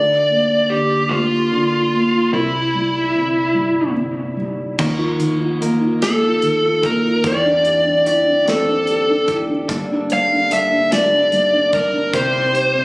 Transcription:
0.00 1.07 D2 medium
0.00 0.69 D3 medium
0.00 0.73 D5 medium
0.29 1.09 A#3 soft
0.70 1.50 D3 soft
0.70 1.12 G4 medium
1.09 2.29 D2 medium
1.09 1.92 A#3 medium
1.09 2.33 F4 medium
1.52 2.31 D3 soft
1.94 2.33 A#3 soft
2.33 3.58 C2 loud
2.33 3.14 C3 medium
2.33 3.93 E4 medium
2.75 3.53 G3 soft
3.15 3.93 C3 soft
3.54 4.75 G1 medium
3.54 4.35 G3 soft
3.94 4.75 C3 soft
4.37 4.77 G3 soft
4.78 7.20 D#2 medium
4.78 5.17 D#3 soft
4.78 5.61 D#3 medium
4.78 5.59 F3 medium
4.78 5.60 A#3 medium
4.78 5.61 D#4 medium
4.78 5.61 A#4 medium
4.78 kick loud
4.78 crash medium
4.99 5.38 F4 soft
5.19 6.41 D#3 soft
5.19 closed hi-hat soft
5.39 5.80 F4 soft
5.61 6.01 F3 medium
5.61 6.01 A#3 soft
5.61 6.00 A#3 medium
5.61 6.00 D#4 medium
5.61 6.02 A#4 medium
5.61 closed hi-hat medium
5.81 6.22 F4 soft
6.01 6.84 D#3 soft
6.01 6.83 F3 soft
6.01 6.83 A#3 soft
6.01 6.82 A#3 medium
6.01 6.82 D#4 medium
6.01 6.85 A4 medium
6.01 snare medium
6.01 closed hi-hat medium
6.23 6.61 F4 soft
6.42 7.22 D#3 soft
6.42 closed hi-hat soft
6.63 7.03 F4 soft
6.83 7.23 A#3 medium
6.83 7.25 A#3 soft
6.83 7.24 D#4 soft
6.83 7.24 A#4 soft
6.83 7.26 A#4 medium
6.83 kick medium
6.83 closed hi-hat soft
7.05 7.24 F4 soft
7.24 9.71 E2 medium
7.24 8.06 E3 medium
7.24 9.65 E3 medium
7.24 8.04 G3 medium
7.24 8.04 C4 medium
7.24 8.06 D4 medium
7.24 8.06 G4 medium
7.24 8.06 D5 medium
7.24 kick medium
7.24 closed hi-hat medium
7.45 7.85 D4 soft
7.65 8.88 G4 soft
7.65 closed hi-hat soft
7.86 8.26 D4 soft
8.05 8.46 G3 soft
8.05 8.45 C4 soft
8.05 8.45 D4 medium
8.05 9.27 E4 soft
8.05 8.44 G4 medium
8.05 8.44 D5 medium
8.05 closed hi-hat medium
8.27 8.67 D4 soft
8.46 9.28 E3 soft
8.46 9.68 G3 soft
8.46 9.28 C4 soft
8.46 9.66 C4 medium
8.46 9.28 D4 medium
8.46 9.27 G4 medium
8.46 9.36 A4 medium
8.46 snare medium
8.46 closed hi-hat medium
8.68 9.08 D4 soft
8.87 9.68 G4 soft
8.87 closed hi-hat soft
9.09 9.48 D4 medium
9.27 9.69 C4 soft
9.27 9.68 D4 soft
9.27 9.68 E4 soft
9.27 9.69 G4 soft
9.27 kick medium
9.27 closed hi-hat soft
9.50 9.69 D4 soft
9.68 12.15 G1 medium
9.68 10.50 G2 medium
9.68 10.50 D3 medium
9.68 10.49 G3 medium
9.68 10.11 G3 medium
9.68 10.49 A#3 medium
9.68 10.50 D4 medium
9.68 10.51 A4 medium
9.68 kick loud
9.68 closed hi-hat medium
9.92 10.31 D4 medium
10.10 10.51 G3 medium
10.10 10.53 F5 medium
10.10 closed hi-hat soft
10.32 10.71 D4 soft
10.50 10.91 G3 medium
10.50 10.92 G3 soft
10.50 10.91 A#3 medium
10.50 10.90 D4 soft
10.50 10.90 A4 medium
10.50 10.90 E5 medium
10.50 closed hi-hat medium
10.72 11.12 D4 soft
10.91 11.74 G2 medium
10.91 11.74 D3 soft
10.91 11.74 G3 soft
10.91 11.31 G3 medium
10.91 11.72 A#3 medium
10.91 11.72 D4 medium
10.91 11.73 A4 medium
10.91 11.70 D5 medium
10.91 snare medium
10.91 closed hi-hat medium
11.13 11.51 D4 soft
11.32 11.72 G3 soft
11.32 closed hi-hat soft
11.53 11.91 D4 medium
11.73 12.13 G3 soft
11.73 12.12 G3 soft
11.73 12.14 A#3 soft
11.73 12.14 D4 soft
11.73 12.12 A#4 medium
11.73 kick medium
11.73 closed hi-hat soft
11.93 12.13 D4 soft
12.13 12.85 C2 medium
12.13 12.85 C3 medium
12.13 12.85 G3 medium
12.13 12.85 C4 medium
12.13 12.85 E4 medium
12.13 12.85 G4 medium
12.13 12.85 C5 medium
12.13 kick loud
12.13 closed hi-hat medium
12.33 12.73 C4 medium
12.53 12.85 G4 medium
12.53 closed hi-hat soft
12.74 12.85 C4 medium

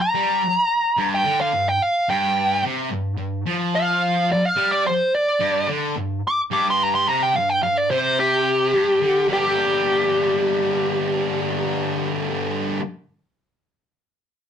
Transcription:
0.01 1.08 A#5 medium
0.15 0.41 G3 loud
0.98 1.25 G2 medium
1.15 1.40 G5 medium
1.25 1.52 D3 medium
1.41 1.67 F5 medium
1.53 1.75 G2 medium
1.69 1.82 G5 medium
1.82 2.08 F5 medium
2.09 2.63 G2 medium
2.09 2.63 G5 medium
2.63 2.90 C3 loud
2.90 3.13 G2 medium
3.18 3.41 G2 medium
3.46 4.29 F3 loud
3.75 4.28 F5 loud
4.30 4.45 D5 medium
4.30 muted distorted electric guitar stroke medium
4.45 4.71 F5 medium
4.57 4.84 G3 loud
4.72 4.85 D5 medium
4.87 5.13 C5 medium
5.15 5.67 D5 loud
5.40 5.67 G2 loud
5.68 5.95 D3 loud
5.96 6.18 G2 medium
6.27 6.39 D6 loud
6.51 7.06 G2 medium
6.51 6.66 D6 medium
6.70 6.83 C6 loud
6.83 6.94 A#5 loud
6.95 7.07 C6 medium
7.07 7.34 C3 loud
7.07 7.23 A#5 medium
7.23 7.36 G5 medium
7.34 7.57 G2 medium
7.34 7.49 F5 medium
7.49 7.62 G5 medium
7.63 7.85 G2 medium
7.63 7.76 F5 medium
7.77 7.90 D5 medium
7.91 8.73 C3 medium
7.91 8.17 C5 medium
8.20 9.26 G4 loud
8.73 9.00 G2 medium
9.01 9.27 D3 medium
9.28 12.78 G2 medium
9.28 12.78 D3 loud
9.28 12.79 G3 loud
9.28 12.80 A#3 loud
9.28 12.81 D4 loud
9.28 12.81 G4 loud
9.33 12.29 G4 medium

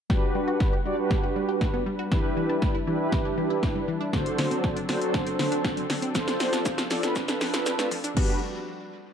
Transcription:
0.10 0.19 G3 medium
0.10 4.09 G3 medium
0.10 0.74 D4 medium
0.10 8.13 D4 medium
0.10 0.74 F#4 medium
0.10 0.74 G4 medium
0.10 4.09 B4 medium
0.10 0.74 B4 loud
0.10 2.10 F#5 medium
0.10 kick loud
0.10 snare medium
0.35 0.44 G3 medium
0.48 0.57 F#4 medium
0.60 kick loud
0.60 snare medium
0.73 0.82 G4 medium
0.85 0.95 G3 medium
0.85 0.96 D4 medium
0.85 0.96 F#4 medium
0.85 0.96 G4 medium
0.85 0.96 D5 medium
0.98 1.83 D4 medium
0.98 1.84 F#4 medium
0.98 1.84 G4 medium
0.98 1.84 B4 medium
1.11 1.20 G3 medium
1.11 kick loud
1.11 snare medium
1.23 1.33 F#4 medium
1.36 1.45 G3 medium
1.49 1.58 G4 medium
1.61 kick loud
1.61 snare medium
1.74 1.83 B3 medium
1.86 1.96 G3 medium
1.99 2.08 F#4 medium
2.11 2.21 E3 medium
2.11 2.76 D4 medium
2.11 2.76 E4 medium
2.11 4.11 E4 medium
2.11 2.76 G4 medium
2.11 2.76 B4 loud
2.11 kick loud
2.11 snare medium
2.37 2.46 E3 medium
2.49 2.59 D4 medium
2.62 kick loud
2.62 snare medium
2.75 2.84 E4 medium
2.87 2.97 E3 medium
2.87 2.98 D4 medium
2.87 2.98 E4 medium
2.87 2.98 G4 medium
2.87 2.98 B4 medium
3.00 3.85 D4 medium
3.00 3.85 E4 medium
3.00 3.85 G4 medium
3.00 3.85 B4 medium
3.12 3.22 E3 medium
3.12 kick loud
3.12 snare medium
3.25 3.34 D4 medium
3.38 3.47 E3 medium
3.50 3.60 E4 medium
3.63 kick loud
3.63 snare medium
3.75 3.85 G3 medium
3.88 3.97 E3 medium
4.01 4.10 D4 medium
4.13 4.22 D3 medium
4.13 6.13 F#3 medium
4.13 8.13 C4 medium
4.13 4.77 D4 medium
4.13 4.77 F#4 medium
4.13 8.13 A4 medium
4.13 4.77 A4 medium
4.13 4.78 C5 loud
4.13 kick loud
4.13 snare medium
4.26 closed hi-hat medium
4.38 4.48 D3 medium
4.38 snare medium
4.38 open hi-hat medium
4.51 4.60 C4 medium
4.51 closed hi-hat medium
4.64 kick loud
4.64 snare medium
4.76 4.86 D4 medium
4.76 closed hi-hat medium
4.89 4.98 D3 medium
4.89 5.00 D4 medium
4.89 5.00 F#4 medium
4.89 5.00 A4 medium
4.89 5.00 C5 loud
4.89 snare medium
4.89 open hi-hat medium
5.01 5.87 D4 medium
5.01 5.87 F#4 medium
5.01 5.87 A4 medium
5.01 5.87 C5 loud
5.01 closed hi-hat medium
5.14 5.23 D3 medium
5.14 kick loud
5.14 snare medium
5.27 5.36 C4 medium
5.27 closed hi-hat medium
5.39 5.49 D3 medium
5.39 snare medium
5.39 open hi-hat medium
5.52 5.61 D4 medium
5.52 closed hi-hat medium
5.64 kick loud
5.64 snare loud
5.77 5.86 F#3 medium
5.77 closed hi-hat medium
5.90 5.99 D3 medium
5.90 snare loud
5.90 open hi-hat medium
6.02 6.12 C4 medium
6.02 closed hi-hat medium
6.15 6.24 F3 loud
6.15 8.15 F3 medium
6.15 6.79 D4 medium
6.15 6.79 F4 medium
6.15 6.79 A4 medium
6.15 6.79 C5 loud
6.15 kick loud
6.15 snare loud
6.15 shaker medium
6.28 snare loud
6.28 closed hi-hat soft
6.28 shaker soft
6.40 6.49 F3 medium
6.40 snare loud
6.40 open hi-hat medium
6.40 shaker medium
6.53 6.62 D4 medium
6.53 snare loud
6.53 closed hi-hat medium
6.53 shaker medium
6.65 kick loud
6.65 snare loud
6.65 shaker medium
6.78 6.87 F4 medium
6.78 snare loud
6.78 closed hi-hat medium
6.78 shaker medium
6.90 7.00 F3 medium
6.90 7.01 D4 medium
6.90 7.01 F4 medium
6.90 7.01 A4 medium
6.90 7.01 D5 medium
6.90 snare loud
6.90 open hi-hat medium
6.90 shaker medium
7.03 7.89 D4 medium
7.03 7.89 F4 medium
7.03 7.89 A4 medium
7.03 7.89 B4 loud
7.03 snare loud
7.03 closed hi-hat medium
7.03 shaker medium
7.16 7.25 F3 medium
7.16 kick loud
7.16 snare loud
7.16 shaker medium
7.28 7.38 D4 medium
7.28 snare loud
7.28 closed hi-hat medium
7.28 shaker medium
7.41 7.50 F3 medium
7.41 snare loud
7.41 open hi-hat medium
7.41 shaker medium
7.54 7.63 F4 medium
7.54 snare loud
7.54 closed hi-hat medium
7.54 shaker medium
7.66 snare loud
7.66 shaker medium
7.79 7.88 A3 medium
7.79 snare loud
7.79 closed hi-hat medium
7.79 shaker medium
7.91 8.01 F3 medium
7.91 open hi-hat medium
7.91 shaker medium
8.04 8.13 D4 medium
8.04 closed hi-hat medium
8.04 shaker medium
8.17 8.40 G3 medium
8.17 8.40 B3 medium
8.17 8.40 D4 medium
8.17 8.40 F#4 loud
8.17 8.40 F#4 medium
8.17 8.40 G4 medium
8.17 8.40 B4 loud
8.17 8.40 B4 medium
8.17 kick loud
8.17 crash medium

